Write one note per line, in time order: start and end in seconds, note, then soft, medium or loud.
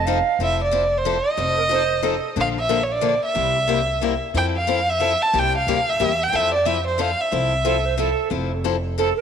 0.00 0.19 F1 medium
0.06 0.17 F3 medium
0.06 0.18 C4 medium
0.06 0.18 D#4 medium
0.06 0.18 A4 medium
0.06 0.39 F5 medium
0.39 1.18 F1 medium
0.39 0.60 F3 medium
0.39 0.60 C4 medium
0.39 0.60 E4 medium
0.39 0.60 A4 medium
0.43 0.60 E5 medium
0.64 0.99 D5 medium
0.71 0.83 F3 medium
0.71 0.83 C4 medium
0.71 0.83 E4 medium
0.71 0.83 A4 medium
0.98 1.31 C5 medium
1.05 1.16 F3 medium
1.05 1.16 C4 medium
1.05 1.16 E4 medium
1.05 1.17 A4 medium
1.29 2.26 D#5 medium
1.37 2.17 F1 medium
1.37 1.58 F3 medium
1.37 1.58 C4 medium
1.37 1.58 D#4 medium
1.37 1.58 A4 medium
1.57 1.63 A#4 medium
1.69 1.81 F3 medium
1.69 1.81 C4 medium
1.69 1.82 D#4 medium
1.69 1.82 A4 medium
1.69 2.05 C5 loud
2.03 2.14 F3 medium
2.03 2.14 C4 medium
2.03 2.14 D#4 medium
2.03 2.30 A4 medium
2.03 2.15 A4 medium
2.36 3.16 A#1 medium
2.36 2.57 D3 medium
2.36 2.57 F3 medium
2.36 2.57 A#3 medium
2.36 2.57 D4 medium
2.36 2.57 A4 medium
2.41 2.49 F5 medium
2.60 2.85 E5 medium
2.69 2.80 D3 medium
2.69 2.81 F3 medium
2.69 2.80 A#3 medium
2.69 2.81 D4 medium
2.69 2.81 A4 medium
2.83 2.93 C#5 medium
2.92 3.24 D5 medium
3.01 3.13 D3 medium
3.01 3.13 F3 medium
3.01 3.13 A#3 medium
3.01 3.13 D4 medium
3.01 3.13 A4 medium
3.25 4.19 E5 medium
3.35 4.15 C2 medium
3.35 3.55 C3 medium
3.35 3.56 G3 medium
3.35 3.56 A#3 medium
3.35 3.56 E4 medium
3.35 3.56 G4 medium
3.67 3.79 C3 medium
3.67 3.79 G3 medium
3.67 3.80 A#3 medium
3.67 3.80 E4 medium
3.67 3.80 G4 medium
4.01 4.13 C3 medium
4.01 4.13 G3 medium
4.01 4.13 A#3 medium
4.01 4.13 E4 medium
4.01 4.13 G4 medium
4.34 5.14 F2 medium
4.34 4.55 F3 medium
4.34 4.55 C4 medium
4.34 4.55 E4 medium
4.34 4.56 A4 medium
4.34 4.46 G5 medium
4.58 4.91 F5 medium
4.67 4.78 F3 medium
4.67 4.79 C4 medium
4.67 4.79 E4 medium
4.67 4.79 A4 medium
4.89 5.24 E5 loud
5.00 5.11 F3 medium
5.00 5.12 C4 medium
5.00 5.11 E4 medium
5.00 5.12 A4 medium
5.22 5.40 A5 medium
5.33 5.60 C2 medium
5.33 5.54 C3 medium
5.33 5.54 G3 medium
5.33 5.54 A#3 medium
5.33 5.54 E4 medium
5.33 5.55 G4 medium
5.38 5.56 G5 loud
5.58 5.91 F5 loud
5.67 5.95 D2 medium
5.67 5.78 C3 medium
5.67 5.78 G3 medium
5.67 5.78 A#3 medium
5.67 5.79 E4 medium
5.67 5.79 G4 medium
5.89 6.24 E5 loud
6.00 6.28 E2 medium
6.00 6.11 C3 medium
6.00 6.11 G3 medium
6.00 6.11 A#3 medium
6.00 6.11 E4 medium
6.00 6.11 G4 medium
6.23 6.37 G5 medium
6.32 7.12 F2 medium
6.32 6.53 F3 medium
6.32 6.53 C4 medium
6.32 6.53 E4 medium
6.32 6.53 A4 medium
6.32 6.53 E5 loud
6.54 6.67 D5 medium
6.65 6.76 F3 medium
6.65 6.77 C4 medium
6.65 6.77 E4 medium
6.65 6.77 A4 medium
6.65 6.85 E5 medium
6.87 7.02 C5 medium
6.98 7.09 F3 medium
6.98 7.10 C4 medium
6.98 7.09 E4 medium
6.98 7.10 A4 medium
6.98 7.22 F5 medium
7.20 8.18 E5 medium
7.32 8.11 C2 medium
7.32 7.52 F3 medium
7.32 7.52 C4 medium
7.32 7.52 E4 medium
7.32 7.52 A4 medium
7.65 7.76 F3 medium
7.65 7.75 C4 medium
7.65 7.76 E4 medium
7.65 7.87 A4 medium
7.65 7.76 A4 medium
7.86 7.97 C5 medium
7.97 8.08 F3 medium
7.97 8.09 C4 medium
7.97 8.09 E4 medium
7.97 8.29 A4 medium
7.97 8.09 A4 medium
8.30 9.10 F1 medium
8.30 8.50 F3 medium
8.30 8.51 C4 medium
8.30 8.51 E4 medium
8.30 8.51 A4 medium
8.64 8.75 F3 medium
8.64 8.75 C4 medium
8.64 8.75 E4 medium
8.64 8.75 A4 medium
8.98 9.08 F3 medium
8.98 9.08 C4 medium
8.98 9.09 E4 medium
8.98 9.16 A4 medium
8.98 9.09 A4 medium
9.17 9.21 A#4 medium